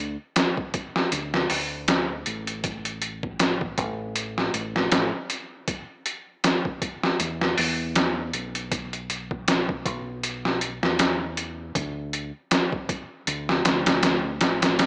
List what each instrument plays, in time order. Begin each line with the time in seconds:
Already playing: fingered electric bass D2
0.36 snare, closed hi-hat
0.57 kick
0.74 kick, closed hi-hat
0.96 snare
1.12 fingered electric bass D2, closed hi-hat
1.34 snare
1.50 fingered electric bass D2, open hi-hat
1.88 snare, closed hi-hat
2.26 fingered electric bass A1, closed hi-hat
2.47 closed hi-hat
2.64 kick, closed hi-hat
2.85 closed hi-hat
3.02 closed hi-hat
3.23 kick
3.39 snare, closed hi-hat
3.61 kick
3.78 fingered electric bass A1, kick, closed hi-hat
4.16 closed hi-hat
4.38 snare
4.54 fingered electric bass A1, closed hi-hat
4.76 snare
4.92 fingered electric bass A1, snare, closed hi-hat
5.30 closed hi-hat
5.68 kick, closed hi-hat
6.06 closed hi-hat
6.44 snare, closed hi-hat
6.65 kick
6.82 kick, closed hi-hat
7.03 snare
7.20 fingered electric bass E2, closed hi-hat
7.41 snare
7.58 fingered electric bass E2, open hi-hat
7.96 snare, closed hi-hat
8.34 fingered electric bass B1, closed hi-hat
8.55 closed hi-hat
8.72 kick, closed hi-hat
8.93 closed hi-hat
9.10 closed hi-hat
9.31 kick
9.48 snare, closed hi-hat
9.69 kick
9.86 fingered electric bass B1, kick, closed hi-hat
10.23 closed hi-hat
10.45 snare
10.61 closed hi-hat
10.83 fingered electric bass E2, snare
10.99 snare, closed hi-hat
11.37 closed hi-hat
11.75 fingered electric bass D2, kick, closed hi-hat
12.13 closed hi-hat
12.51 snare, closed hi-hat
12.72 kick
12.89 kick, closed hi-hat
13.27 fingered electric bass D2, closed hi-hat
13.49 snare
13.65 fingered electric bass D2, snare, closed hi-hat
13.86 snare, closed hi-hat
14.03 snare, closed hi-hat
14.41 fingered electric bass A1, snare, closed hi-hat
14.62 snare, closed hi-hat
14.79 snare, closed hi-hat